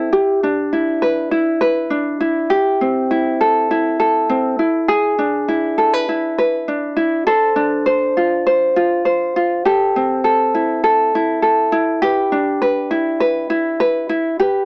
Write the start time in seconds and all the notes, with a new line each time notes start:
Already playing: C4 E4 G4 A4
0.12 G4
0.43 D4
0.73 E4
1.02 B4
1.31 E4
1.61 B4
1.90 D4
2.21 E4
2.50 G4
2.81 C4
3.11 E4
3.41 A4
3.71 E4
4.00 A4
4.30 C4
4.59 E4
4.88 G#4
5.19 D4
5.49 E4
5.78 A4
5.94 B4
6.09 E4
6.38 B4
6.68 D4
6.97 E4
7.27 A4 C5
7.56 D4
7.86 C5
8.17 F4
8.47 C5
8.76 F4
9.05 C5
9.36 F4
9.65 G4 A4
9.96 C4
10.24 A4
10.55 E4
10.84 A4
11.15 E4
11.42 A4
11.72 E4
12.02 G4 B4
12.32 D4
12.62 B4
12.91 E4
13.20 B4
13.50 E4
13.80 B4
14.09 E4
14.39 G4 B4